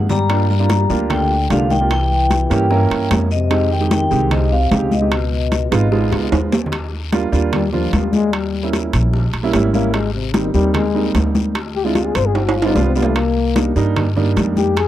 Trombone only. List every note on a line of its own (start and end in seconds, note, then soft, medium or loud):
0.10 0.47 G3 loud
0.49 1.06 G3 medium
1.11 1.48 D3 medium
1.51 1.69 D3 medium
1.71 1.79 D#3 medium
1.91 3.07 E3 medium
3.32 3.69 C3 medium
3.72 3.91 D#3 medium
3.93 4.29 D#3 medium
4.32 4.51 C3 medium
4.52 4.89 C3 medium
4.92 6.28 B2 medium
7.53 7.71 G3 medium
7.72 7.95 F3 medium
7.93 8.15 G3 medium
8.13 8.34 G#3 loud
8.33 8.73 G3 medium
9.73 9.96 A#3 medium
9.94 10.13 G#3 medium
10.14 10.36 C3 medium
10.34 10.53 D#3 medium
10.54 10.75 G3 loud
10.74 11.15 G#3 medium
11.75 11.87 G4 medium
11.85 11.97 E4 medium
11.95 12.07 F4 medium
12.06 12.17 G#4 medium
12.16 12.28 C5 loud
12.26 12.37 G#4 medium
12.35 12.47 G4 medium
12.45 12.58 F#4 medium
12.56 12.68 F4 medium
12.66 12.77 D#4 medium
12.76 12.87 D4 medium
12.85 12.97 C4 medium
12.96 13.07 B3 medium
13.06 13.18 A3 medium
13.17 13.77 A#3 medium
14.57 14.79 G4 medium
14.78 14.88 G#4 loud